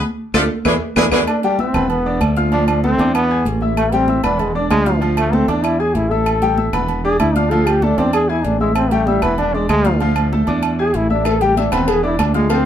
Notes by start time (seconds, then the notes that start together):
0.34 D2 C3 D3 F3 A3 D4 F4 A4, cowbell, high conga, high timbale, claves
0.65 E2 B2 D3 E3 G#3 D4 E4 G#4 B4, cowbell, high conga, high timbale, claves
0.96 E2 B2 D3 E3 G#3 D4 E4 G#4 B4, cowbell, high conga, high timbale, claves
1.12 E2 B2 D3 E3 G#3 D4 E4 G#4 B4, cowbell, high conga, high timbale, claves
1.27 D4, high conga, low agogo, claves
1.43 G3 D4 G4 G5, high conga, low agogo
1.59 C4 E4 E5 E6, high conga
1.74 E1 B3 B4 B5, high conga, low conga, low agogo, claves
1.90 B3, high conga, low agogo
2.06 D4 D5 D6, high conga
2.21 D2, high conga, low agogo, claves
2.37 F4 F5 F6, high conga, low agogo
2.52 F3 D4 F4 F5, high conga, low agogo
2.68 D4, low agogo, claves
2.83 A3 C4 A4 A5, high conga
2.98 E2 D4 D5 D6, high conga, low agogo
3.15 B3, high conga, low agogo, claves
3.30 G#4 G#5 G#6, high conga
3.45 A1, high conga, low agogo
3.61 E4 E5 E6, high conga
3.77 A3, high conga, low agogo, claves
3.92 G3 C4 G4 G5, high conga, low agogo
4.08 E4 E5 E6, high conga
4.23 E1 B3 D4 B4 B5, high conga, low conga, low agogo, claves
4.39 G#3, high conga, low conga, low agogo
4.55 D4 D5 D6, high conga
4.70 D2 G#3, high conga, low timbale, low agogo, claves
4.86 F4 F5 F6, high conga, low agogo
5.01 F3 F4 F5, low agogo
5.17 A3, high conga, low agogo, claves
5.32 A3 C4 A4 A5, high conga
5.48 E2 D4 D5 D6, low agogo
5.64 E4, high conga, low agogo, claves
5.79 G#4 G#5 G#6, high conga
5.95 A1 E4, high conga, low agogo
6.10 E4 A4 E5 E6, high conga
6.26 low agogo, claves
6.42 G3 G4 G5, high conga, low agogo
6.57 E4 E5 E6, high conga
6.73 E1 B3 B4 B5, high conga, low conga, low agogo, claves
6.88 high conga, low agogo
7.04 D4 G#4 D5 D6, high conga
7.20 D2 E4, high conga, low agogo, claves
7.35 D4 F4 F5 F6, high conga, low agogo
7.51 F3 F4 A4 F5, high conga, low agogo
7.67 G4, low agogo, claves
7.82 A3 D4 A4 A5, high conga
7.98 E2 C4 D4 D5 D6, high conga, low agogo
8.13 G#4, low agogo, claves
8.29 E4 G#4 G#5 G#6, high conga
8.44 A1 D4, high conga, low agogo
8.60 G#3 E4 E5 E6, high conga
8.75 C4, low agogo, claves
8.91 G3 A3 G4 G5, high conga, low agogo
9.06 G3 E4 E5 E6, high conga
9.22 E1 E3 B3 B4 B5, high conga, low conga, low agogo, claves
9.38 D4, high conga, low conga, low agogo
9.54 G#3 D4 D5 D6, high conga
9.69 D2 G#3, high conga, low agogo, claves
9.85 F4 F5 F6, high conga, low agogo
10.00 F3 F4 F5, high conga, low agogo
10.16 low agogo, claves
10.32 A3 A4 A5, high conga
10.47 E2 D4 D5 D6, low agogo
10.63 high conga, low agogo, claves
10.79 G#4 G#5 G#6, high conga
10.94 A1 E4, high conga, low agogo
11.10 D4 E4 E5 E6, high conga
11.25 A4, cowbell, high conga, low agogo, claves
11.41 G3 G4 G5, low agogo
11.57 D4 E4 E5 E6, cowbell, high conga
11.72 E1 B3 C4 B4 B5, cowbell, high conga, low conga, low agogo, claves
11.88 G#4, cowbell, high conga, low agogo
12.03 D4 E4 D5 D6, high conga
12.19 D2 D4, cowbell, high conga, low timbale, low agogo, claves
12.34 G#3 F4 F5 F6, high conga, low agogo
12.50 F3 C4 F4 F5, cowbell, high conga, low agogo